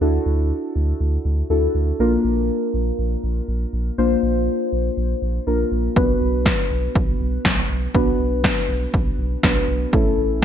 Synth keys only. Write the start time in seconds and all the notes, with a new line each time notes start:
0.01 D4 E4 F#4 A4
1.50 D4 E4 F#4 A4
2.00 A#3 D4 F4 A#4
3.98 A#3 D4 F4 C5
5.47 A#3 D4 F4 A#4
5.96 B3 D4 F#4 B4
7.95 B3 D4 F#4 B4
9.44 B3 D4 F#4 B4
9.93 A3 C#4 E4 A4